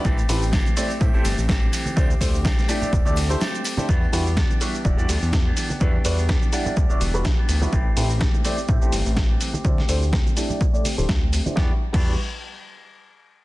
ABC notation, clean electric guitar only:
X:1
M:4/4
L:1/16
Q:"Swing 16ths" 1/4=125
K:Em
V:1 name="Clean electric guitar"
[E,A,CG] [A,CG]2 [A,CG] [E,A,CG]2 [E,A,CG] [A,CG]2 [A,CG] [E,A,CG] [A,CG] [E,A,CG]2 [E,A,CG]2 | [A,CG] [CG]2 [CG] [A,CG]2 [A,CG] [CG]2 [CG] [A,CG] [CG] [A,CG]2 [A,CG]2 | [E,B,DG]3 [B,DG] [E,B,DG]2 [E,B,DG]3 [B,DG] [E,B,DG] [B,DG]2 [E,B,DG] [E,B,DG] [B,DG] | [E,B,DG]3 [B,DG] [E,B,DG]2 [E,B,DG]3 [B,DG] [E,B,DG]3 [E,B,DG] [E,B,DG] [B,DG] |
[E,A,CG]3 [A,CG] [E,A,CG]2 [E,A,CG] [A,CG]2 [A,CG] [E,A,CG]3 [E,A,CG] [E,A,CG] [A,CG] | [A,CG]3 [CG] [A,C]2 [A,CG] [CG]2 [CG] [A,CG] [CG]2 [A,CG] [A,CG] [CG] | [B,DG] z2 [B,DG]2 z8 z3 |]